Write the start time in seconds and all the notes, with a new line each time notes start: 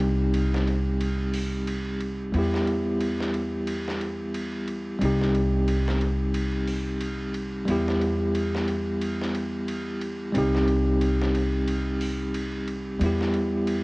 Already playing: C2 G3 C4 D#4 G4
0.00 ride
0.34 ride
0.54 snare
0.67 ride
1.01 ride
1.34 open hi-hat
1.67 ride
2.01 ride
2.33 E2 G3 B3 E4, ride
2.39 G4
2.54 snare
2.67 ride
3.01 ride
3.21 snare
3.34 ride
3.67 ride
3.88 snare
4.01 ride
4.34 ride
4.68 ride
4.99 C2 G3 C4, ride
5.03 D#4 G4
5.22 snare
5.35 ride
5.68 ride
5.88 snare
6.01 ride
6.34 ride
6.68 open hi-hat
7.01 ride
7.34 ride
7.65 E2 G3 B3, ride
7.70 E4 G4
7.88 snare
8.01 ride
8.35 ride
8.55 snare
8.68 ride
9.01 ride
9.21 snare
9.35 ride
9.68 ride
10.01 ride
10.32 C2 G3 C4 D#4, ride
10.38 G4
10.55 snare
10.68 ride
11.01 ride
11.22 snare
11.35 ride
11.68 ride
12.01 open hi-hat
12.34 ride
12.68 ride
13.00 E2 G3 B3, ride
13.04 E4 G4
13.21 snare
13.34 ride
13.67 ride